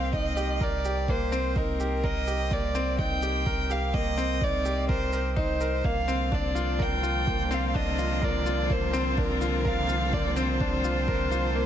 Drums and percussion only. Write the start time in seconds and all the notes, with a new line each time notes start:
0.13 kick
0.37 shaker
0.61 kick
0.85 shaker
1.08 kick
1.33 shaker
1.56 kick
1.80 shaker
2.04 kick
2.27 shaker
2.51 kick
2.75 shaker
2.99 kick
3.22 shaker
3.46 kick
3.70 shaker
3.94 kick
4.18 shaker
4.41 kick
4.65 shaker
4.89 kick
5.13 shaker
5.37 kick
5.61 shaker
5.84 kick
6.09 shaker
6.32 kick
6.56 shaker
6.80 kick
7.04 shaker
7.27 kick
7.51 shaker
7.75 kick
7.99 shaker
8.22 kick
8.46 shaker
8.70 kick
8.94 shaker
9.18 kick
9.41 shaker
9.65 kick
9.89 shaker
10.13 kick
10.37 shaker
10.60 kick
10.84 shaker
11.08 kick
11.32 shaker